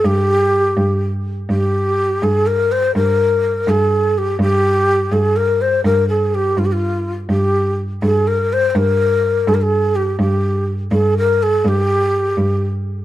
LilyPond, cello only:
\new Staff \with { instrumentName = "Cello" } { \clef bass \time 6/8 \tempo 4. = 83 g,4. g,4. | g,4. g,4. | g,4. g,4. | g,4. g,4. |
g,4. g,4. | g,4. g,4. | g,4. g,4. | g,4. g,4. |
g,4. g,4. | }